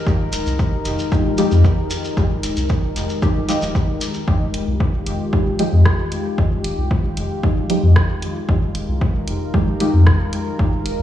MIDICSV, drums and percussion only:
0, 0, Header, 1, 3, 480
1, 0, Start_track
1, 0, Key_signature, -4, "minor"
1, 0, Tempo, 526316
1, 60, Time_signature, 4, 2, 24, 8
1, 10054, End_track
2, 0, Start_track
2, 0, Title_t, "Shekere"
2, 68, Note_on_c, 9, 82, 36
2, 159, Note_off_c, 9, 82, 0
2, 298, Note_on_c, 9, 82, 91
2, 389, Note_off_c, 9, 82, 0
2, 424, Note_on_c, 9, 82, 47
2, 515, Note_off_c, 9, 82, 0
2, 536, Note_on_c, 9, 82, 38
2, 627, Note_off_c, 9, 82, 0
2, 777, Note_on_c, 9, 82, 80
2, 869, Note_off_c, 9, 82, 0
2, 902, Note_on_c, 9, 82, 49
2, 994, Note_off_c, 9, 82, 0
2, 1021, Note_on_c, 9, 82, 34
2, 1112, Note_off_c, 9, 82, 0
2, 1258, Note_on_c, 9, 82, 89
2, 1349, Note_off_c, 9, 82, 0
2, 1381, Note_on_c, 9, 82, 50
2, 1472, Note_off_c, 9, 82, 0
2, 1501, Note_on_c, 9, 82, 40
2, 1592, Note_off_c, 9, 82, 0
2, 1738, Note_on_c, 9, 82, 86
2, 1830, Note_off_c, 9, 82, 0
2, 1864, Note_on_c, 9, 82, 46
2, 1955, Note_off_c, 9, 82, 0
2, 1979, Note_on_c, 9, 82, 35
2, 2070, Note_off_c, 9, 82, 0
2, 2222, Note_on_c, 9, 82, 84
2, 2313, Note_off_c, 9, 82, 0
2, 2341, Note_on_c, 9, 82, 52
2, 2433, Note_off_c, 9, 82, 0
2, 2453, Note_on_c, 9, 82, 37
2, 2545, Note_off_c, 9, 82, 0
2, 2706, Note_on_c, 9, 82, 83
2, 2798, Note_off_c, 9, 82, 0
2, 2824, Note_on_c, 9, 82, 52
2, 2915, Note_off_c, 9, 82, 0
2, 2939, Note_on_c, 9, 82, 35
2, 3031, Note_off_c, 9, 82, 0
2, 3185, Note_on_c, 9, 82, 87
2, 3277, Note_off_c, 9, 82, 0
2, 3302, Note_on_c, 9, 82, 53
2, 3393, Note_off_c, 9, 82, 0
2, 3422, Note_on_c, 9, 82, 39
2, 3514, Note_off_c, 9, 82, 0
2, 3658, Note_on_c, 9, 82, 90
2, 3750, Note_off_c, 9, 82, 0
2, 3777, Note_on_c, 9, 82, 49
2, 3868, Note_off_c, 9, 82, 0
2, 10054, End_track
3, 0, Start_track
3, 0, Title_t, "Drums"
3, 60, Note_on_c, 9, 36, 111
3, 151, Note_off_c, 9, 36, 0
3, 298, Note_on_c, 9, 42, 78
3, 389, Note_off_c, 9, 42, 0
3, 540, Note_on_c, 9, 36, 112
3, 631, Note_off_c, 9, 36, 0
3, 778, Note_on_c, 9, 42, 70
3, 869, Note_off_c, 9, 42, 0
3, 1020, Note_on_c, 9, 36, 117
3, 1111, Note_off_c, 9, 36, 0
3, 1259, Note_on_c, 9, 42, 81
3, 1350, Note_off_c, 9, 42, 0
3, 1500, Note_on_c, 9, 36, 114
3, 1591, Note_off_c, 9, 36, 0
3, 1739, Note_on_c, 9, 42, 69
3, 1831, Note_off_c, 9, 42, 0
3, 1980, Note_on_c, 9, 36, 112
3, 2071, Note_off_c, 9, 36, 0
3, 2219, Note_on_c, 9, 42, 81
3, 2311, Note_off_c, 9, 42, 0
3, 2343, Note_on_c, 9, 42, 31
3, 2434, Note_off_c, 9, 42, 0
3, 2460, Note_on_c, 9, 36, 111
3, 2551, Note_off_c, 9, 36, 0
3, 2700, Note_on_c, 9, 42, 69
3, 2791, Note_off_c, 9, 42, 0
3, 2940, Note_on_c, 9, 36, 119
3, 3031, Note_off_c, 9, 36, 0
3, 3179, Note_on_c, 9, 42, 82
3, 3270, Note_off_c, 9, 42, 0
3, 3420, Note_on_c, 9, 36, 112
3, 3511, Note_off_c, 9, 36, 0
3, 3659, Note_on_c, 9, 42, 68
3, 3750, Note_off_c, 9, 42, 0
3, 3900, Note_on_c, 9, 36, 115
3, 3991, Note_off_c, 9, 36, 0
3, 4140, Note_on_c, 9, 42, 83
3, 4231, Note_off_c, 9, 42, 0
3, 4380, Note_on_c, 9, 36, 116
3, 4471, Note_off_c, 9, 36, 0
3, 4619, Note_on_c, 9, 42, 73
3, 4710, Note_off_c, 9, 42, 0
3, 4860, Note_on_c, 9, 36, 126
3, 4951, Note_off_c, 9, 36, 0
3, 5099, Note_on_c, 9, 42, 86
3, 5191, Note_off_c, 9, 42, 0
3, 5339, Note_on_c, 9, 37, 95
3, 5340, Note_on_c, 9, 36, 116
3, 5431, Note_off_c, 9, 36, 0
3, 5431, Note_off_c, 9, 37, 0
3, 5579, Note_on_c, 9, 42, 70
3, 5671, Note_off_c, 9, 42, 0
3, 5820, Note_on_c, 9, 36, 122
3, 5911, Note_off_c, 9, 36, 0
3, 6059, Note_on_c, 9, 42, 87
3, 6150, Note_off_c, 9, 42, 0
3, 6300, Note_on_c, 9, 36, 125
3, 6391, Note_off_c, 9, 36, 0
3, 6540, Note_on_c, 9, 42, 76
3, 6631, Note_off_c, 9, 42, 0
3, 6780, Note_on_c, 9, 36, 127
3, 6871, Note_off_c, 9, 36, 0
3, 7020, Note_on_c, 9, 42, 89
3, 7111, Note_off_c, 9, 42, 0
3, 7260, Note_on_c, 9, 36, 125
3, 7260, Note_on_c, 9, 37, 97
3, 7351, Note_off_c, 9, 36, 0
3, 7351, Note_off_c, 9, 37, 0
3, 7500, Note_on_c, 9, 42, 75
3, 7592, Note_off_c, 9, 42, 0
3, 7740, Note_on_c, 9, 36, 126
3, 7831, Note_off_c, 9, 36, 0
3, 7979, Note_on_c, 9, 42, 88
3, 8070, Note_off_c, 9, 42, 0
3, 8220, Note_on_c, 9, 36, 124
3, 8311, Note_off_c, 9, 36, 0
3, 8459, Note_on_c, 9, 42, 77
3, 8550, Note_off_c, 9, 42, 0
3, 8700, Note_on_c, 9, 36, 127
3, 8791, Note_off_c, 9, 36, 0
3, 8940, Note_on_c, 9, 42, 87
3, 9032, Note_off_c, 9, 42, 0
3, 9180, Note_on_c, 9, 36, 127
3, 9180, Note_on_c, 9, 37, 95
3, 9271, Note_off_c, 9, 37, 0
3, 9272, Note_off_c, 9, 36, 0
3, 9419, Note_on_c, 9, 42, 73
3, 9511, Note_off_c, 9, 42, 0
3, 9661, Note_on_c, 9, 36, 119
3, 9752, Note_off_c, 9, 36, 0
3, 9901, Note_on_c, 9, 42, 90
3, 9992, Note_off_c, 9, 42, 0
3, 10054, End_track
0, 0, End_of_file